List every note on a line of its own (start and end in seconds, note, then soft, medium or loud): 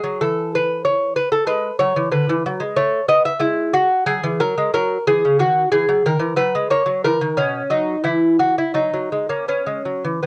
0.00 0.19 F#3 medium
0.00 0.19 G#4 medium
0.21 1.13 E3 medium
0.21 0.52 A4 medium
0.55 0.84 B4 medium
0.85 1.15 C#5 loud
1.16 1.31 B4 medium
1.32 1.47 A4 medium
1.47 1.70 G#3 medium
1.47 1.78 B4 medium
1.79 1.96 F#3 medium
1.79 2.11 C#5 loud
1.97 2.11 E3 medium
2.12 2.28 D3 medium
2.12 2.74 B4 loud
2.30 2.45 E3 medium
2.46 2.61 F#3 medium
2.60 2.76 G#3 medium
2.77 3.00 A3 medium
2.77 3.07 C#5 loud
3.08 3.32 B3 medium
3.08 3.25 D#5 loud
3.25 3.41 E5 loud
3.39 3.87 G#3 medium
3.39 3.72 E4 medium
3.73 4.05 F#4 loud
4.06 4.22 F#3 medium
4.06 4.38 G#4 loud
4.23 4.39 E3 medium
4.40 4.55 F#3 medium
4.40 4.71 A#4 loud
4.58 4.72 G#3 medium
4.74 4.97 F#3 medium
4.74 5.05 A#4 loud
5.07 5.22 E3 medium
5.07 5.38 G#4 loud
5.25 5.39 C#3 medium
5.39 5.63 D#3 medium
5.39 5.71 F#4 medium
5.72 5.88 E3 medium
5.72 6.04 G#4 loud
5.89 6.04 F#3 medium
6.06 6.19 D#3 medium
6.06 6.36 A#4 loud
6.19 6.36 E3 medium
6.36 6.53 F#3 medium
6.36 6.69 B4 loud
6.55 6.70 G#3 medium
6.70 6.85 A#3 medium
6.70 7.03 C#5 medium
6.86 7.03 F#3 medium
7.04 7.21 E3 medium
7.04 7.36 A#4 loud
7.21 7.37 D#3 medium
7.37 7.61 B2 medium
7.37 7.69 C#4 medium
7.70 7.95 F#3 medium
7.70 8.03 D#4 medium
8.04 8.54 E3 medium
8.04 8.38 E4 medium
8.39 8.57 F#4 medium
8.58 8.74 E4 medium
8.74 8.91 F#3 medium
8.74 9.26 D#4 medium
8.94 9.10 F#3 medium
9.12 9.29 G#3 medium
9.29 9.47 A#3 medium
9.29 9.48 C#4 medium
9.48 9.65 B3 medium
9.48 10.19 C#4 medium
9.67 9.84 G#3 medium
9.85 10.03 F#3 medium
10.04 10.21 E3 medium
10.22 10.26 D#3 medium
10.22 10.26 B3 medium